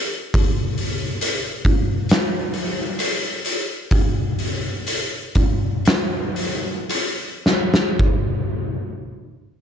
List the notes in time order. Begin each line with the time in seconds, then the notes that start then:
0.34 kick, open hi-hat
0.78 open hi-hat
1.21 open hi-hat
1.65 kick, open hi-hat
2.09 snare, open hi-hat
2.54 open hi-hat
2.99 open hi-hat
3.45 open hi-hat
3.91 kick, open hi-hat
4.39 open hi-hat
4.87 open hi-hat
5.35 kick, open hi-hat
5.85 snare, open hi-hat
6.36 open hi-hat
6.89 open hi-hat
7.46 snare
7.74 snare
7.99 kick